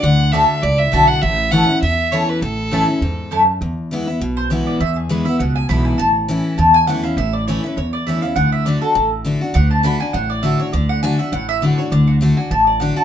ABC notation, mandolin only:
X:1
M:4/4
L:1/8
Q:"Swing" 1/4=202
K:A
V:1 name="Mandolin"
z2 [A,Fda] z3 [A,Fda] z | z2 [A,Eca] z3 [A,Eca] z | z2 [A,Eca] z3 [A,Eca] z | z4 z =c ^c d |
e G B e f g b g | a z3 a g f =f | e d c B c d e =f | f e d A2 z3 |
f a b g f d e c | d f g e f e d c | d F z g a d f a |]